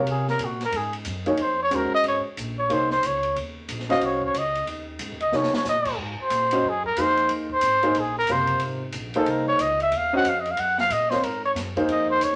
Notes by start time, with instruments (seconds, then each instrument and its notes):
Already playing: upright piano C3 F4 A#4 C#5
0.06 upright bass C3, ride
0.11 trumpet G#4
0.28 trumpet A#4, snare
0.39 upright bass A#2, hi-hat pedal, ride
0.45 trumpet F#4
0.60 snare, ride
0.65 trumpet A#4
0.72 upright bass G#2, ride
0.77 trumpet G#4
0.93 ride
1.05 upright bass F#2, hi-hat pedal, ride
1.26 upright piano A#3 D#4 G#4 C#5, ride
1.37 upright bass F2, ride
1.42 trumpet C5
1.63 trumpet C#5
1.70 upright bass D#2, upright piano G#3 C#4 F#4 C5, hi-hat pedal, ride
1.76 trumpet A#4
1.92 trumpet D#5, muted upright bass stroke
2.03 upright bass G#1, ride
2.08 trumpet C#5
2.24 muted upright bass stroke
2.37 upright bass A#1, hi-hat pedal, ride
2.58 trumpet C#5
2.69 upright bass C2, upright piano A#3 D#4 G#4 C#5, trumpet C5, ride
2.91 trumpet C5, snare
3.03 upright bass C#2, trumpet C#5, hi-hat pedal, ride
3.23 ride
3.35 upright bass D#2, ride
3.68 upright bass A#1, hi-hat pedal, ride
3.80 snare
3.89 upright piano C#4 F#4 C5 F5, trumpet D#5, snare, ride
4.00 upright bass C2, ride
4.06 trumpet C#5
4.22 kick
4.26 trumpet C#5
4.33 upright bass C#2, hi-hat pedal, ride
4.38 trumpet D#5
4.55 ride
4.66 upright bass D#2, ride
4.99 upright bass G#2, hi-hat pedal, ride
5.11 upright bass D#2
5.20 upright bass C#2, trumpet D#5, ride
5.32 upright bass C3, upright piano A#3 D#4 G#4 C#5, snare
5.37 trumpet C#5
5.43 snare
5.53 trumpet C#5, muted upright bass stroke, snare
5.65 upright bass A#2, snare, hi-hat pedal
5.69 trumpet D#5
5.85 kick, crash
5.97 upright bass G#2
6.22 trumpet C5
6.30 upright bass A#2, hi-hat pedal, ride
6.51 upright piano C#4 F#4 C5 D#5, ride
6.63 upright bass F#2
6.69 trumpet G#4
6.84 trumpet A#4, kick
6.96 upright bass F2, upright piano A#3 D#4 G#4 A#4, hi-hat pedal, ride
7.00 trumpet C5
7.17 ride
7.29 upright bass D#2, ride
7.50 trumpet C5, kick
7.61 upright bass G#1, hi-hat pedal, ride
7.83 upright piano A#3 D#4 G#4 C5, ride
7.94 upright bass A#1, ride
7.99 trumpet G#4
8.19 trumpet A#4
8.27 upright bass F#1, upright piano C3 F4 A#4 C5, hi-hat pedal, ride
8.32 trumpet C5
8.47 ride
8.60 upright bass G#1, ride
8.92 upright bass A#1, hi-hat pedal, ride
9.14 upright piano A#3 D#4 G#4 C5, trumpet A4, ride
9.25 upright bass C2, ride
9.30 trumpet A#4
9.48 trumpet C#5
9.58 upright bass C#2, trumpet D#5, hi-hat pedal, ride
9.80 trumpet E5, ride
9.91 upright bass D#2, ride
9.97 trumpet F5
10.13 upright piano C#4 F#4 C5 D#5, trumpet F#5
10.23 upright bass F2, hi-hat pedal, ride
10.29 trumpet F5
10.40 trumpet D#5
10.46 ride
10.51 trumpet F5
10.57 upright bass F#2, trumpet F#5, ride
10.78 trumpet F5, snare
10.89 upright bass A#2, trumpet D#5, hi-hat pedal, ride
11.10 upright piano C4 F4 A#4 C#5, trumpet C5, snare
11.22 upright bass G#2, trumpet A#4, ride
11.46 trumpet C#5
11.54 upright bass F#2, snare, hi-hat pedal, ride
11.76 upright piano A#3 D#4 G#4 C5, kick, ride
11.86 upright bass F2, ride
11.91 trumpet D#5
12.10 trumpet C5
12.19 upright bass D#2, hi-hat pedal, ride
12.23 trumpet C#5